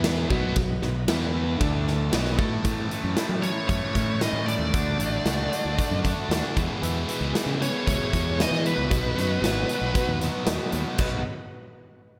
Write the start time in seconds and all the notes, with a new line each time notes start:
Already playing: E2 E3 B3 E4 B4 E5
0.04 snare, ride bell
0.29 B1 B2 F#3 B3 D#4 F#4 B4 D#5, kick
0.55 B1 B2 F#3, kick, ride bell
0.82 B1 B2 F#3, snare
1.08 E2 E3 B3 E4 B4 E5, snare, ride bell
1.33 E4 B4 E5
1.58 D2 D3 A3 D4 A4 D5, kick, ride bell
1.62 A3 D4
1.88 snare
2.11 B1 B2 F#3 B3 D#4 F#4 B4 D#5, snare, ride bell
2.25 snare
2.38 A2 A3 E4 A4, kick
2.62 A2 E3 A3 C#4 E4 C#5, kick, closed hi-hat
2.89 A2 E3 A3 C#4 E4, closed hi-hat
3.04 F#2
3.17 A2 E3 A3 C#4 E4, snare, closed hi-hat
3.29 F#3
3.42 A2 E3 A3 C#4 E4 C#5, closed hi-hat
3.67 F#2 A2 E3 A3 C#4 E4 C#5, kick, closed hi-hat
3.94 A2 E3 A3 C#4 E4, kick, snare, closed hi-hat
4.20 A2 E3 A3 C#4 E4 D#5, snare, closed hi-hat
4.33 A2
4.46 A2 E3 A3 C#4 E4 D5, closed hi-hat
4.59 D#2
4.72 D2 D3 A3 D4 F#4 D5, kick, closed hi-hat
4.98 A1 D3 A3 D4 F#4, closed hi-hat
5.25 C#2 D3 A3 D4 F#4, snare, closed hi-hat
5.51 D3 A3 D4 F#4, closed hi-hat
5.65 D2
5.77 D3 A3 D4 F#4, kick, closed hi-hat
5.91 F#2
6.03 D3 A3 D4 F#4, kick, closed hi-hat
6.29 D#2 D3 A3 D4 F#4, snare, closed hi-hat
6.55 E2 B2 E3 G#3 B3 E4 G#4 B4, kick, closed hi-hat
6.82 E2 B2 E3 G#3 B3 G#4 B4 E5, closed hi-hat
7.08 E2 B2 E3 G#3 B3 G#4, closed hi-hat
7.21 C#2
7.33 E2 B2 E3 G#3 B3 G#4 B4 E5, snare, closed hi-hat
7.46 C#3
7.61 E2 B2 E3 G#3 B3 G#4 C#5, closed hi-hat
7.87 C#2 E2 B2 E3 G#3 B3 G#4 B4 C#5 E5, kick, closed hi-hat
8.12 E2 B2 E3 G#3 B3 G#4, kick, snare, closed hi-hat
8.37 E2 B2 E3 G#3 B3 G#4 B4 E5, snare, closed hi-hat
8.41 G#4 D#5
8.51 E3, snare
8.63 E2 B2 E3 G#3 B3 G#4 B4, closed hi-hat
8.78 C#2
8.90 B1 B2 F#3 B3 D#4 F#4 B4 D#5, kick, closed hi-hat
9.14 F#2 B2 F#3 B3 D#4 F#4
9.18 B2 B3, snare, closed hi-hat
9.40 G#1 B2 F#3 B3 D#4 F#4 B4 F#5, closed hi-hat
9.44 snare
9.66 B2 F#3 B3 D#4 F#4, closed hi-hat
9.81 B1
9.93 B2 F#3 B3 D#4 F#4 B4 F#5, kick, closed hi-hat
10.07 D#2
10.19 B2 F#3 B3 D#4 F#4, snare, closed hi-hat
10.45 D#2 B2 F#3 B3 D#4 F#4 B4 D#5, snare, closed hi-hat
10.50 B3
10.71 D#2 B2 F#3 B3 D#4 F#4, closed hi-hat
10.98 B1 B2 F#3 B3 D#4 F#4 B4 D#5, kick, crash